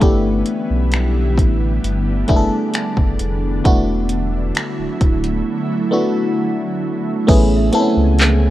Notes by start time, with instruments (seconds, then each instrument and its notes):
Already playing: ambient pad B3, fm electric piano B4 E5
0.00 sub bass G1, ambient pad D3 G3 E4, fm electric piano A3 B3 D4 E4 G4, kick, closed hi-hat
0.46 closed hi-hat
0.70 sub bass B1
0.92 finger snap, closed hi-hat
1.38 sub bass A1, kick, closed hi-hat
1.84 sub bass G1, ambient pad D4, closed hi-hat
2.28 sub bass F#1, fm electric piano A3 B3 D4 E4 G#4, kick, closed hi-hat
2.37 fm electric piano A4
2.74 finger snap, closed hi-hat
2.97 sub bass F#1, kick
3.19 sub bass F1, closed hi-hat
3.64 sub bass E1, ambient pad F#3 A3 E4, fm electric piano A3 B3 D4 E4 F#4, kick, closed hi-hat
4.09 closed hi-hat
4.55 finger snap, closed hi-hat
4.79 sub bass D1
5.01 sub bass D1, kick, closed hi-hat
5.24 closed hi-hat
5.91 fm electric piano A3 B3 D4 E4 F#4
7.27 sub bass A1, ambient pad C#3 A3 B3 G#5, fm electric piano A3 B3 C#4 E4 G#4, celesta B4, kick, closed hi-hat, crash
7.56 celesta E5
7.73 fm electric piano A3 B3 C4 E4 A4, closed hi-hat
7.80 fm electric piano C#4, celesta F#5
7.97 sub bass C#2
8.19 clap, closed hi-hat